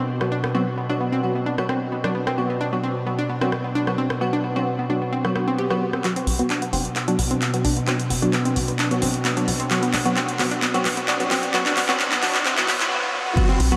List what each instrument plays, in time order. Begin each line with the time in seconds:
Already playing: synth drone B2
0.21 synth stab F#3 B3 F#4, synth arpeggio sound B3, cross-stick
0.32 synth arpeggio sound D4
0.44 synth arpeggio sound B3, cross-stick
0.55 synth stab F#3 B3 F#4, synth arpeggio sound C4
0.78 synth arpeggio sound B3
0.90 synth stab F#3 B3 F#4, synth arpeggio sound D4
1.00 synth arpeggio sound B3
1.12 synth arpeggio sound C4
1.23 synth stab F#3 B3 F#4
1.35 synth arpeggio sound B3
1.46 synth arpeggio sound D4
1.58 synth stab F#3 B3 F#4, synth arpeggio sound B3, cross-stick
1.69 synth arpeggio sound C4, cross-stick
1.92 synth arpeggio sound B3
2.04 synth stab F#3 B3 F#4, synth arpeggio sound D4, cross-stick
2.15 synth arpeggio sound B3
2.27 synth arpeggio sound C4, cross-stick
2.38 synth stab F#3 B3 F#4
2.50 synth arpeggio sound B3
2.61 synth arpeggio sound D4
2.73 synth stab F#3 B3 F#4, synth arpeggio sound B3
2.84 synth arpeggio sound C4
3.06 synth stab F#3 B3 F#4, synth arpeggio sound B3
3.19 synth arpeggio sound D4
3.29 synth arpeggio sound B3
3.41 synth stab F#3 B3 F#4, synth arpeggio sound C4, cross-stick
3.52 cross-stick
3.64 synth arpeggio sound B3
3.75 synth arpeggio sound D4
3.87 synth stab F#3 B3 F#4, synth arpeggio sound B3, cross-stick
3.98 synth arpeggio sound C4
4.10 cross-stick
4.21 synth stab F#3 B3 F#4, synth arpeggio sound B3
4.33 synth arpeggio sound D4
4.44 synth arpeggio sound B3
4.56 synth stab F#3 B3 F#4, synth arpeggio sound C4
4.79 synth arpeggio sound B3
4.90 synth stab F#3 B3 F#4, synth arpeggio sound D4
5.02 synth arpeggio sound B3
5.13 synth arpeggio sound C4, swell
5.25 synth stab F#3 B3 F#4, cross-stick
5.36 synth stab F#3 B3 F#4, synth arpeggio sound B3, cross-stick
5.48 synth arpeggio sound C4
5.58 synth arpeggio sound G4
5.70 synth stab F#3 B3 F#4, synth arpeggio sound B3, cross-stick
5.93 synth arpeggio sound C4, cross-stick
6.04 synth drone B2, synth stab F#3 B3 F#4, synth arpeggio sound B3, clap, closed hi-hat, riser
6.16 synth arpeggio sound C4, closed hi-hat
6.27 analog synth bass B1, open hi-hat
6.39 synth stab F#3 B3 F#4, synth arpeggio sound B3, closed hi-hat
6.50 synth arpeggio sound D4, clap, closed hi-hat
6.62 synth arpeggio sound B3, closed hi-hat
6.73 analog synth bass F#1, synth stab F#3 B3 F#4, synth arpeggio sound C4, open hi-hat
6.85 closed hi-hat
6.96 synth arpeggio sound B3, clap, closed hi-hat
7.08 synth stab F#3 B3 F#4, synth arpeggio sound D4, closed hi-hat
7.19 analog synth bass B1, synth arpeggio sound B3, open hi-hat
7.31 synth arpeggio sound C4, closed hi-hat
7.42 clap, closed hi-hat
7.54 synth stab F#3 B3 F#4, synth arpeggio sound B3, closed hi-hat
7.65 analog synth bass B1, synth arpeggio sound D4, open hi-hat
7.77 synth arpeggio sound B3, closed hi-hat
7.87 synth stab F#3 B3 F#4, synth arpeggio sound C4, clap, closed hi-hat
8.00 closed hi-hat
8.10 analog synth bass F#1, synth arpeggio sound B3, open hi-hat
8.22 synth stab F#3 B3 F#4, synth arpeggio sound D4, closed hi-hat
8.33 synth arpeggio sound B3, clap, closed hi-hat
8.45 synth arpeggio sound C4, closed hi-hat
8.56 analog synth bass B1, synth stab F#3 B3 F#4, open hi-hat
8.68 synth arpeggio sound B3, closed hi-hat
8.79 synth arpeggio sound D4, clap, closed hi-hat
8.91 synth stab F#3 B3 F#4, synth arpeggio sound B3, closed hi-hat
9.02 analog synth bass A1, synth arpeggio sound C4, open hi-hat
9.14 closed hi-hat
9.25 synth arpeggio sound B3, clap, closed hi-hat
9.37 synth stab F#3 B3 F#4, synth arpeggio sound D4, closed hi-hat
9.48 analog synth bass B1, synth arpeggio sound B3, open hi-hat
9.60 synth arpeggio sound C4, closed hi-hat
9.71 synth stab F#3 B3 F#4, clap, closed hi-hat
9.83 synth arpeggio sound B3, closed hi-hat
9.93 analog synth bass B1, synth arpeggio sound D4, clap, open hi-hat
10.06 synth stab F#3 B3 F#4, synth arpeggio sound B3, closed hi-hat
10.16 synth arpeggio sound C4, clap, closed hi-hat
10.29 closed hi-hat
10.39 analog synth bass F#1, synth stab F#3 B3 F#4, synth arpeggio sound B3, clap, open hi-hat
10.51 synth arpeggio sound D4, closed hi-hat
10.62 synth arpeggio sound B3, clap, closed hi-hat
10.74 synth stab F#3 B3 F#4, synth arpeggio sound C4, closed hi-hat
10.85 analog synth bass B1, clap, open hi-hat
10.97 synth arpeggio sound B3, closed hi-hat
11.08 synth arpeggio sound D4, clap, closed hi-hat
11.20 synth stab F#3 B3 F#4, synth arpeggio sound B3, closed hi-hat
11.31 analog synth bass B1, synth arpeggio sound C4, clap, open hi-hat
11.43 closed hi-hat
11.54 synth stab F#3 B3 F#4, synth arpeggio sound B3, clap, closed hi-hat
11.66 synth arpeggio sound D4, clap, closed hi-hat
11.77 analog synth bass F#1, synth arpeggio sound B3, clap, open hi-hat
11.89 synth stab F#3 B3 F#4, synth arpeggio sound C4, clap, closed hi-hat
12.00 clap, closed hi-hat
12.12 synth arpeggio sound B3, clap, closed hi-hat
12.22 analog synth bass B1, synth stab F#3 B3 F#4, synth arpeggio sound D4, clap, open hi-hat
12.35 synth arpeggio sound B3, clap, closed hi-hat
12.45 synth arpeggio sound C4, clap, closed hi-hat
12.57 synth stab F#3 B3 F#4, clap, closed hi-hat
12.68 analog synth bass A1, synth stab F#3 B3 F#4, synth arpeggio sound B3, clap, open hi-hat
12.80 synth arpeggio sound C4, clap, closed hi-hat
12.91 synth arpeggio sound B3
13.03 synth arpeggio sound B3
13.14 high tom
13.26 synth arpeggio sound B3, mid tom
13.37 synth stab F#3 B3 F#4, synth arpeggio sound B3, kick, closed hi-hat, crash
13.49 synth arpeggio sound C4
13.60 analog synth bass B1, open hi-hat
13.72 synth stab F#3 B3 F#4, synth arpeggio sound B3, closed hi-hat